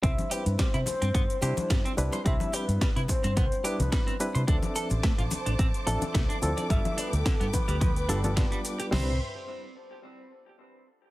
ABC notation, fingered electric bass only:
X:1
M:4/4
L:1/16
Q:"Swing 16ths" 1/4=108
K:C
V:1 name="Fingered electric bass" clef=bass
C,, z2 G,, z C, z G,, G,, z C, z G,, z C,, z | C,, z2 G,, z C, z G,, C,, z2 C,, z3 C, | D,, z2 A,,, z A,,, z A,,, A,,, z A,,, z C,, z D,, z | G,,, z2 D,, z G,, z D,,3 G,,,2 z4 |
C,,2 z12 z2 |]